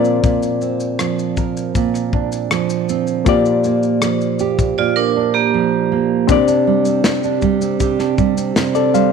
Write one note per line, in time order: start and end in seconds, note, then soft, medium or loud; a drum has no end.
0.00 0.22 A#2 medium
0.00 0.99 F3 medium
0.00 0.27 C4 medium
0.00 2.84 C4 medium
0.00 2.13 F4 medium
0.00 2.84 F4 medium
0.00 2.85 A#4 medium
0.00 2.86 D5 medium
0.05 shaker soft
0.24 1.74 A#2 medium
0.24 kick loud
0.24 shaker medium
0.43 shaker soft
0.61 2.88 C4 medium
0.61 shaker soft
0.80 shaker soft
0.99 2.51 F3 medium
0.99 cross-stick loud
0.99 shaker medium
1.19 shaker soft
1.37 4.40 A#4 medium
1.37 kick medium
1.37 shaker soft
1.57 shaker medium
1.75 3.26 A#2 medium
1.75 kick medium
1.75 shaker medium
1.94 cross-stick soft
1.94 shaker soft
2.13 5.16 D4 medium
2.13 kick medium
2.32 shaker medium
2.51 4.03 F3 medium
2.51 cross-stick loud
2.51 shaker medium
2.70 shaker medium
2.89 3.34 C4 medium
2.89 shaker medium
3.07 shaker soft
3.25 4.77 A#2 medium
3.25 6.24 A#3 medium
3.25 6.25 F4 medium
3.25 6.26 G4 medium
3.25 kick loud
3.25 shaker medium
3.29 6.26 D5 medium
3.46 shaker soft
3.64 5.91 A#3 medium
3.64 shaker soft
3.83 shaker medium
4.02 5.53 F3 medium
4.02 cross-stick loud
4.02 shaker medium
4.21 shaker soft
4.39 6.30 G4 medium
4.39 shaker soft
4.59 kick medium
4.59 shaker medium
4.78 6.37 A#2 medium
4.78 4.96 F4 medium
4.78 4.96 D5 medium
4.96 5.33 D4 medium
4.96 5.32 A#4 medium
5.16 6.48 D4 medium
5.34 6.25 A#3 medium
5.34 6.25 G4 medium
5.54 6.37 F3 medium
5.92 6.37 A#3 medium
6.28 7.04 C3 medium
6.28 9.12 C4 medium
6.28 9.12 D4 medium
6.28 7.79 G4 medium
6.28 9.12 G4 medium
6.28 kick loud
6.28 shaker medium
6.32 8.16 D5 medium
6.48 7.23 D4 medium
6.48 shaker medium
6.67 7.41 G3 medium
6.85 7.61 C4 medium
6.85 shaker medium
7.04 7.79 C3 medium
7.04 snare loud
7.04 shaker medium
7.24 7.98 D4 medium
7.24 shaker soft
7.42 8.17 G3 medium
7.42 kick medium
7.42 shaker soft
7.61 8.37 C4 medium
7.61 shaker medium
7.80 8.55 C3 medium
7.80 9.12 G4 medium
7.80 kick medium
7.80 shaker medium
7.99 8.74 D4 medium
7.99 snare soft
7.99 shaker soft
8.18 8.93 G3 medium
8.18 kick medium
8.18 shaker soft
8.37 9.12 C4 soft
8.37 shaker medium
8.56 9.12 C3 medium
8.56 snare loud
8.56 shaker medium
8.75 9.12 D4 medium
8.75 8.94 A4 medium
8.75 8.93 D5 medium
8.75 shaker medium
8.94 9.12 G3 medium
8.94 9.12 C5 medium
8.94 9.12 F5 medium
8.94 shaker medium